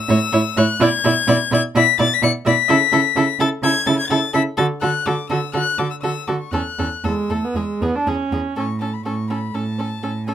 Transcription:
Already playing: E6
0.09 A2 E4 C#5
0.32 A2 E4 C#5
0.57 A2 E4 C#5 F#6
0.80 B2 E4 D5 G#6
1.04 B2 E4 D5
1.28 B2 E4 D5
1.51 B2 E4 D5 G#6
1.75 B2 E4 D5 B6
1.99 B2 E4 D5 A6
2.14 B6
2.22 B2 E4 D5 C#7
2.45 B2 E4 D5 B6
2.68 C#3 E4 A4
2.92 C#3 E4 A4
3.16 C#3 E4 A4
3.39 C#3 E4 A4 A6
3.62 C#3 E4 A4 G#6
3.86 C#3 E4 A4 A6
3.99 G#6
4.10 C#3 E4 A4 A6
4.33 C#3 E4 A4 B6
4.57 D3 F#4 A4 A6
4.82 D3 F#4 A4 F#6
5.06 D3 F#4 A4 D6
5.30 D3 F#4 A4 E6
5.53 D3 F#4 A4 F#6
5.78 D3 F#4 A4 D6
5.90 E6
6.02 D3 F#4 A4 E6
6.27 D3 F#4 A4 D6
6.39 C#6
6.51 E2 C#4 A4 F#6
6.79 E2 C#4 A4
7.04 E2 G#3 A4 E6
7.30 E2 A3 A4
7.45 B3
7.55 E2 G#3 G#4
7.82 E2 B3 G#4
7.95 D4
8.07 E2 C#4 G#4
8.32 E2 G#4
8.56 A2 C#4 A4 C#6
8.81 C#4 A4 A5
8.94 B5
9.05 A2 C#4 A4 C#6
9.30 C#4 A4 B5
9.54 A2 C#4 A4 A5
9.79 C#4 A4
10.02 A2 C#4 A4
10.26 C#4 A4 G#5

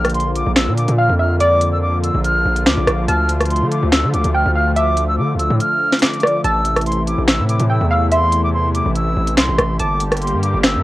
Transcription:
Already playing: A#1 D3 F3 A#3 F4 G5 F6
0.05 cross-stick, closed hi-hat
0.10 closed hi-hat
0.15 C6, closed hi-hat
0.20 closed hi-hat
0.36 D6, closed hi-hat
0.47 A#1
0.56 E6, finger snap, snare, closed hi-hat
0.68 A#2
0.78 D6, closed hi-hat
0.88 A#2, closed hi-hat
0.98 F5 F6
1.10 F2
1.20 E5 F6
1.40 D5 D6, closed hi-hat
1.61 closed hi-hat
1.73 E6
1.82 D6
2.04 E6, closed hi-hat
2.15 A#1
2.24 F6, closed hi-hat
2.45 A#1
2.56 closed hi-hat
2.66 D2 D6, finger snap, snare
2.77 A#1
2.87 A#1, cross-stick, closed hi-hat
3.08 D2 A3 A5 F6, closed hi-hat
3.29 closed hi-hat
3.40 cross-stick, closed hi-hat
3.45 closed hi-hat
3.50 C6, closed hi-hat
3.56 closed hi-hat
3.61 D3
3.71 D6, closed hi-hat
3.82 D2
3.92 E6, finger snap, snare, closed hi-hat
4.03 D3
4.13 D2 D6, closed hi-hat
4.24 D2, closed hi-hat
4.34 G5 F6
4.45 D2
4.55 F5 F6
4.76 E5 D6, closed hi-hat
4.97 closed hi-hat
5.08 E6
5.18 D3 D6
5.34 D2
5.39 E6, closed hi-hat
5.50 A2
5.60 F6, closed hi-hat
5.92 snare, closed hi-hat
5.99 D6, finger snap, snare, closed hi-hat
6.06 closed hi-hat
6.13 closed hi-hat
6.20 D5, cross-stick, closed hi-hat
6.27 closed hi-hat
6.44 A1 C3 E3 A3 E4 A5 E6, closed hi-hat
6.65 closed hi-hat
6.76 cross-stick, closed hi-hat
6.81 closed hi-hat
6.86 C6, closed hi-hat
6.92 closed hi-hat
7.07 D6, closed hi-hat
7.18 A1
7.28 E6, finger snap, snare, closed hi-hat
7.39 A2
7.49 D6, closed hi-hat
7.60 A2, closed hi-hat
7.70 G5 E6
7.81 E2
7.91 F5 E6
8.12 E5 C6, closed hi-hat
8.32 closed hi-hat
8.44 D6
8.54 C6
8.75 D6, closed hi-hat
8.86 A1
8.96 E6, closed hi-hat
9.17 A1
9.28 closed hi-hat
9.37 C2 C6, finger snap, snare
9.49 A1
9.59 A1, cross-stick, closed hi-hat
9.80 G1 D3 G3 A#3 G4 A5 D6, closed hi-hat
10.00 closed hi-hat
10.12 cross-stick, closed hi-hat
10.17 closed hi-hat
10.22 C6, closed hi-hat
10.27 closed hi-hat
10.33 G2
10.43 D6, closed hi-hat
10.54 G1
10.63 E6, finger snap, snare, closed hi-hat
10.75 G2

